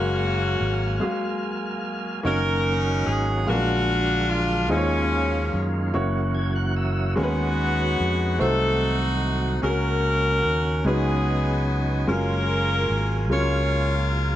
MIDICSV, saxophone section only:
0, 0, Header, 1, 2, 480
1, 0, Start_track
1, 0, Key_signature, 6, "major"
1, 0, Tempo, 819672
1, 1315, Time_signature, 6, 3, 24, 8
1, 8408, End_track
2, 0, Start_track
2, 0, Title_t, "Saxophone section"
2, 0, Program_c, 0, 65
2, 0, Note_on_c, 0, 58, 68
2, 0, Note_on_c, 0, 61, 71
2, 0, Note_on_c, 0, 66, 98
2, 815, Note_off_c, 0, 58, 0
2, 815, Note_off_c, 0, 61, 0
2, 838, Note_off_c, 0, 66, 0
2, 1317, Note_on_c, 0, 70, 117
2, 1323, Note_on_c, 0, 63, 88
2, 1324, Note_on_c, 0, 61, 88
2, 1773, Note_off_c, 0, 70, 0
2, 1794, Note_on_c, 0, 68, 93
2, 2017, Note_off_c, 0, 61, 0
2, 2017, Note_off_c, 0, 63, 0
2, 2035, Note_off_c, 0, 68, 0
2, 2044, Note_on_c, 0, 66, 104
2, 2052, Note_on_c, 0, 62, 77
2, 2514, Note_on_c, 0, 65, 98
2, 2521, Note_off_c, 0, 66, 0
2, 2742, Note_off_c, 0, 62, 0
2, 2752, Note_on_c, 0, 61, 94
2, 2756, Note_off_c, 0, 65, 0
2, 2758, Note_on_c, 0, 53, 70
2, 2761, Note_on_c, 0, 54, 67
2, 3453, Note_off_c, 0, 61, 0
2, 3455, Note_off_c, 0, 53, 0
2, 3457, Note_off_c, 0, 54, 0
2, 4207, Note_on_c, 0, 61, 77
2, 4207, Note_on_c, 0, 66, 103
2, 4211, Note_on_c, 0, 59, 73
2, 4900, Note_off_c, 0, 61, 0
2, 4900, Note_off_c, 0, 66, 0
2, 4902, Note_off_c, 0, 59, 0
2, 4919, Note_on_c, 0, 69, 119
2, 4920, Note_on_c, 0, 63, 89
2, 4924, Note_on_c, 0, 66, 89
2, 5399, Note_off_c, 0, 69, 0
2, 5616, Note_off_c, 0, 63, 0
2, 5618, Note_off_c, 0, 66, 0
2, 5638, Note_on_c, 0, 61, 73
2, 5639, Note_on_c, 0, 66, 77
2, 5642, Note_on_c, 0, 70, 106
2, 6334, Note_off_c, 0, 61, 0
2, 6334, Note_off_c, 0, 66, 0
2, 6336, Note_off_c, 0, 70, 0
2, 6363, Note_on_c, 0, 68, 90
2, 6364, Note_on_c, 0, 59, 69
2, 6369, Note_on_c, 0, 63, 71
2, 6900, Note_off_c, 0, 68, 0
2, 7056, Note_off_c, 0, 59, 0
2, 7059, Note_off_c, 0, 63, 0
2, 7077, Note_on_c, 0, 70, 113
2, 7082, Note_on_c, 0, 65, 82
2, 7085, Note_on_c, 0, 61, 77
2, 7771, Note_off_c, 0, 70, 0
2, 7774, Note_off_c, 0, 65, 0
2, 7775, Note_off_c, 0, 61, 0
2, 7801, Note_on_c, 0, 65, 78
2, 7802, Note_on_c, 0, 73, 107
2, 7803, Note_on_c, 0, 70, 81
2, 8276, Note_off_c, 0, 73, 0
2, 8408, Note_off_c, 0, 65, 0
2, 8408, Note_off_c, 0, 70, 0
2, 8408, End_track
0, 0, End_of_file